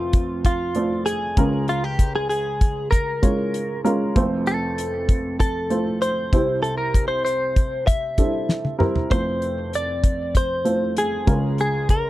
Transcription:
0.00 1.33 F1 medium
0.00 1.33 F2 medium
0.00 0.15 A3 medium
0.00 0.16 C4 medium
0.00 0.16 F4 medium
0.00 0.45 F4 medium
0.00 0.16 C5 medium
0.13 kick medium
0.13 closed hi-hat medium
0.45 1.05 F4 medium
0.45 kick medium
0.45 closed hi-hat medium
0.75 1.23 A3 medium
0.75 1.23 C4 soft
0.75 1.23 F4 soft
0.75 1.23 D5 medium
0.75 closed hi-hat medium
1.06 1.69 G#4 medium
1.06 closed hi-hat medium
1.37 3.81 C#2 soft
1.37 3.81 C#3 medium
1.37 2.37 G#3 medium
1.37 2.36 C#4 medium
1.37 2.37 F4 medium
1.37 2.37 A#4 medium
1.37 kick medium
1.37 closed hi-hat soft
1.68 1.84 F4 medium
1.68 closed hi-hat medium
1.84 2.15 G4 medium
1.99 kick medium
1.99 closed hi-hat medium
2.16 2.28 G#4 medium
2.29 2.90 G#4 medium
2.29 closed hi-hat medium
2.61 kick medium
2.61 closed hi-hat soft
2.91 3.80 A#4 medium
2.91 kick medium
2.91 closed hi-hat medium
3.22 3.70 G#3 medium
3.22 3.70 C#4 soft
3.22 3.70 F4 soft
3.22 3.70 C#5 medium
3.22 kick medium
3.22 closed hi-hat medium
3.54 closed hi-hat medium
3.84 4.08 G#3 medium
3.84 4.08 C#4 medium
3.84 4.09 F4 medium
3.84 4.09 A#4 medium
3.84 closed hi-hat soft
4.16 6.28 F1 medium
4.16 6.28 F2 medium
4.16 5.11 A3 medium
4.16 5.11 C4 medium
4.16 5.11 F4 medium
4.16 5.11 C5 medium
4.16 kick medium
4.16 closed hi-hat medium
4.47 5.36 A4 medium
4.47 closed hi-hat medium
4.78 closed hi-hat medium
5.09 kick medium
5.09 closed hi-hat medium
5.40 6.01 A4 medium
5.40 kick medium
5.40 closed hi-hat medium
5.70 6.18 A3 medium
5.70 6.18 C4 soft
5.70 6.18 F4 soft
5.70 6.18 C5 medium
5.70 closed hi-hat medium
6.02 6.62 C5 medium
6.02 closed hi-hat medium
6.33 8.76 C2 soft
6.33 8.76 C3 medium
6.33 7.32 G3 medium
6.33 7.32 C4 medium
6.33 7.32 E4 medium
6.33 7.32 C5 medium
6.33 kick medium
6.33 closed hi-hat medium
6.63 6.77 A4 medium
6.63 closed hi-hat medium
6.78 7.07 A#4 medium
6.94 kick medium
6.94 closed hi-hat medium
7.08 7.23 C5 medium
7.25 7.87 C5 medium
7.25 closed hi-hat medium
7.56 kick medium
7.56 closed hi-hat medium
7.87 8.76 E5 medium
7.87 kick medium
7.87 closed hi-hat medium
8.18 8.66 G3 medium
8.18 8.66 C4 soft
8.18 8.25 D4 soft
8.18 8.66 A4 medium
8.18 kick medium
8.18 closed hi-hat medium
8.25 8.69 E4 soft
8.49 snare soft
8.65 high tom soft
8.78 9.03 G3 medium
8.78 9.03 C4 medium
8.78 9.03 E4 medium
8.78 9.03 A#4 medium
8.78 mid tom medium
8.96 floor tom medium
9.10 11.23 F1 soft
9.10 11.23 F2 soft
9.10 10.06 A3 medium
9.10 10.06 C4 soft
9.10 10.06 F4 medium
9.10 10.06 C5 medium
9.10 9.75 C5 medium
9.10 kick medium
9.10 closed hi-hat medium
9.42 closed hi-hat medium
9.73 10.36 D5 medium
9.73 closed hi-hat medium
10.04 kick medium
10.04 closed hi-hat medium
10.35 10.98 C5 medium
10.35 kick medium
10.35 closed hi-hat medium
10.65 11.13 A3 medium
10.65 11.13 C4 medium
10.65 11.13 F4 soft
10.65 11.13 C5 medium
10.65 closed hi-hat medium
10.97 11.60 G#4 medium
10.97 closed hi-hat medium
11.27 12.10 C#2 soft
11.27 12.10 C#3 soft
11.27 12.10 G#3 medium
11.27 12.10 C#4 medium
11.27 12.10 F4 medium
11.27 12.10 A#4 medium
11.27 kick medium
11.27 closed hi-hat medium
11.58 11.90 G#4 medium
11.58 closed hi-hat medium
11.89 12.10 A#4 medium
11.89 kick medium
11.89 closed hi-hat medium

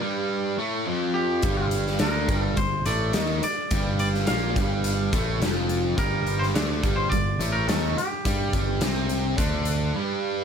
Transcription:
0.00 0.56 G2 medium
0.00 0.56 G3 medium
0.00 0.54 D5 medium
0.58 0.85 A2 medium
0.58 0.86 A3 medium
0.86 1.42 F2 medium
0.86 1.43 F3 medium
1.14 1.67 G4 loud
1.42 1.96 G1 medium
1.42 2.00 G2 medium
1.42 2.00 G3 medium
1.42 kick loud
1.42 closed hi-hat medium
1.71 closed hi-hat medium
1.87 snare soft
1.99 2.27 D2 medium
1.99 2.27 D3 medium
1.99 2.28 D4 medium
1.99 2.39 A#4 medium
1.99 snare loud
1.99 closed hi-hat medium
2.28 2.55 G1 medium
2.28 2.56 G2 medium
2.28 2.57 G3 medium
2.28 kick loud
2.28 closed hi-hat medium
2.39 2.54 A4 medium
2.57 2.84 G1 medium
2.57 2.80 G2 medium
2.57 2.84 C5 medium
2.57 kick medium
2.57 closed hi-hat medium
2.86 3.13 A1 medium
2.86 3.13 A2 medium
2.86 3.14 A3 medium
2.86 3.42 D5 medium
2.86 closed hi-hat medium
3.13 3.40 D#2 medium
3.13 3.41 D#3 medium
3.13 3.42 D#4 medium
3.13 snare loud
3.13 closed hi-hat medium
3.43 3.99 D5 medium
3.43 muted overdriven electric guitar stroke medium
3.43 muted picked electric bass stroke soft
3.43 closed hi-hat medium
3.71 4.24 G1 medium
3.71 4.27 G2 medium
3.71 4.28 G3 loud
3.71 kick loud
3.71 closed hi-hat medium
3.99 4.07 D5 medium
3.99 closed hi-hat medium
4.14 snare soft
4.27 4.55 A#1 medium
4.27 4.55 A#2 medium
4.27 4.56 A#3 medium
4.27 5.37 F5 medium
4.27 snare loud
4.27 closed hi-hat medium
4.55 5.10 G1 medium
4.55 5.12 G2 medium
4.55 5.12 G3 medium
4.55 kick loud
4.55 closed hi-hat medium
4.84 closed hi-hat medium
5.13 5.39 A1 medium
5.13 5.41 A2 medium
5.13 5.41 A3 medium
5.13 kick loud
5.13 closed hi-hat medium
5.40 5.94 F1 medium
5.40 5.97 F2 medium
5.40 5.97 F3 medium
5.40 snare loud
5.40 closed hi-hat medium
5.69 closed hi-hat medium
5.97 6.51 G1 medium
5.97 6.54 G2 medium
5.97 6.54 G3 loud
5.97 6.42 A#4 loud
5.97 kick medium
5.97 closed hi-hat medium
6.27 closed hi-hat soft
6.39 6.44 C5 medium
6.39 snare soft
6.53 6.81 D2 medium
6.53 6.82 D3 medium
6.53 6.83 D4 loud
6.53 6.96 D5 loud
6.53 snare loud
6.53 closed hi-hat medium
6.82 7.10 G1 medium
6.82 7.11 G2 medium
6.82 7.11 G3 medium
6.82 kick loud
6.82 closed hi-hat medium
6.96 7.09 C5 medium
7.10 7.39 G1 medium
7.10 7.35 G2 medium
7.10 7.55 D5 loud
7.10 kick medium
7.10 closed hi-hat medium
7.39 7.66 A1 medium
7.39 7.68 A2 medium
7.39 7.68 A3 loud
7.39 closed hi-hat medium
7.52 7.67 A#4 medium
7.67 7.95 D#2 medium
7.67 7.96 D#3 medium
7.67 7.96 D#4 medium
7.67 7.97 A4 medium
7.67 snare loud
7.67 closed hi-hat medium
7.96 8.78 G4 medium
7.96 muted picked electric bass stroke soft
7.96 muted overdriven electric guitar stroke medium
7.96 closed hi-hat medium
8.25 8.52 G2 medium
8.25 8.53 G3 medium
8.25 8.54 G4 medium
8.25 kick loud
8.25 closed hi-hat medium
8.53 8.79 G1 medium
8.53 8.81 G2 medium
8.53 8.82 G3 medium
8.53 kick medium
8.53 closed hi-hat medium
8.80 9.34 C2 medium
8.80 9.36 C3 medium
8.80 9.37 C4 medium
8.80 snare loud
8.80 closed hi-hat medium
9.09 closed hi-hat medium
9.37 9.92 D2 medium
9.37 9.94 D3 medium
9.37 9.94 D4 medium
9.37 kick medium
9.37 closed hi-hat medium
9.65 closed hi-hat medium
9.94 10.44 G2 medium
9.94 10.44 G3 medium

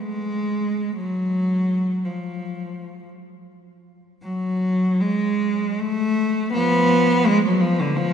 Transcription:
0.01 0.97 G#3 medium
0.96 2.04 F#3 medium
2.05 3.09 F3 medium
4.23 4.99 F#3 loud
5.01 5.80 G#3 loud
5.79 6.55 A3 loud
6.53 7.21 F3 loud
6.53 7.24 B3 loud
7.27 7.44 G#3 loud
7.45 7.62 F#3 loud
7.60 7.78 F3 loud
7.81 7.97 D3 loud
7.96 8.13 F3 loud

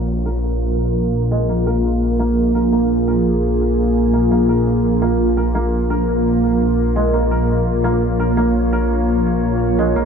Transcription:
0.00 4.30 A#1 medium
0.00 1.49 A#3 medium
0.00 10.05 A#3 medium
0.00 10.05 F4 medium
0.00 0.25 A#4 medium
0.00 1.48 A#4 medium
0.00 downlifter medium
0.26 1.66 A#4 medium
1.31 4.69 G#3 medium
1.49 2.19 A#3 medium
1.49 4.31 G#4 medium
1.67 2.54 A#4 medium
2.19 2.72 A#3 medium
2.55 3.07 A#4 medium
2.72 4.13 A#3 medium
3.08 4.49 A#4 medium
4.13 4.31 A#3 medium
4.31 9.94 A#1 medium
4.31 5.01 A#3 medium
4.31 7.13 A#4 medium
4.49 5.37 A#4 medium
5.02 5.54 A#3 medium
5.37 5.90 A#4 medium
5.55 7.13 A#3 medium
5.90 7.31 A#4 medium
6.96 9.77 G#3 medium
7.13 7.84 A#3 medium
7.13 9.95 C#5 medium
7.31 8.19 A#4 medium
7.84 8.37 A#3 loud
8.20 8.72 A#4 medium
8.37 9.96 A#3 medium
8.73 10.05 A#4 medium
9.79 10.05 G#3 medium
9.96 10.05 A#1 medium
9.96 10.05 A#3 medium

